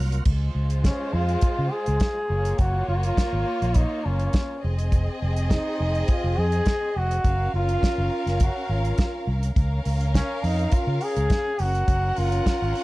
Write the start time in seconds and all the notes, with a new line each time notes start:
Already playing: C2 F#3 A#3 C#4 F4 A#4
0.12 closed hi-hat
0.25 C#2 G#3 F4 C5, kick, crash
0.55 C#2
0.70 closed hi-hat
0.84 C#4, kick, snare, closed hi-hat
1.13 F2 F4
1.29 closed hi-hat
1.41 muted fingered electric bass stroke, kick, closed hi-hat
1.59 C#3
1.72 G#4
1.86 C#2, closed hi-hat
2.00 kick, snare, closed hi-hat
2.29 F#1 A#3 F4 C#5
2.45 closed hi-hat
2.58 F#1 F#4, kick, closed hi-hat
2.88 F#1 F4
2.96 F#4
3.03 F4, closed hi-hat
3.17 kick, snare, closed hi-hat
3.33 G#1
3.62 A#1, closed hi-hat
3.74 D#4, kick, closed hi-hat
4.06 F#1 C#4
4.19 closed hi-hat
4.33 kick, snare, closed hi-hat
4.62 F1 C4 G#4 D#5
4.78 closed hi-hat
4.92 kick, closed hi-hat
5.22 F1
5.37 closed hi-hat
5.50 D#4, kick, snare, closed hi-hat
5.80 F1
5.95 closed hi-hat
6.08 F4, kick, closed hi-hat
6.24 F1
6.38 F2 G#4
6.52 closed hi-hat
6.66 kick, snare, closed hi-hat
6.96 F1 F#4
7.11 closed hi-hat
7.24 F#1 C#4 A#4 F5, kick, closed hi-hat
7.54 F#1 F4
7.69 closed hi-hat
7.83 kick, snare, closed hi-hat
7.98 F#1
8.26 F#1, snare, closed hi-hat
8.40 F#4, kick, closed hi-hat
8.69 G#1 F4
8.85 closed hi-hat
8.98 kick, snare, closed hi-hat
9.27 C2
9.43 closed hi-hat
9.56 C#2 C#4 A#4 F5, kick, closed hi-hat
9.85 C#2, open hi-hat
10.01 closed hi-hat
10.14 C#4, kick, snare, closed hi-hat
10.44 F2 D#4, open hi-hat
10.59 closed hi-hat
10.71 F4, muted fingered electric bass stroke, kick, closed hi-hat
10.87 C#3
11.01 G#4, open hi-hat
11.16 C#2, closed hi-hat
11.30 kick, snare, closed hi-hat
11.59 F#1 C#4 F#4 A#4 F#5, open hi-hat
11.75 closed hi-hat
11.88 F#1, kick, closed hi-hat
12.16 F#1 F4, open hi-hat
12.32 closed hi-hat
12.46 kick, snare, closed hi-hat
12.62 G#1
12.75 open hi-hat